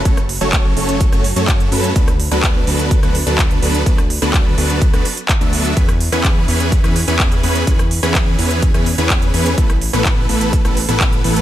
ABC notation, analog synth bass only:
X:1
M:4/4
L:1/16
Q:1/4=126
K:Emix
V:1 name="Analog synth bass" clef=bass
F,,,3 F,,,3 F,,,3 F,,,2 F,,3 F,,2 | D,,3 D,,3 D,,3 D,,2 D,,3 D,,2 | D,,3 D,,3 D,,3 D,, z3 D,,3 | E,,3 E,,3 E,,3 E,,2 E,,3 E,,2 |
E,,3 E,,3 E,,3 E,,2 E,,3 E,,2 | A,,,3 A,,,3 A,,,3 A,,,2 A,,,3 A,,,2 |]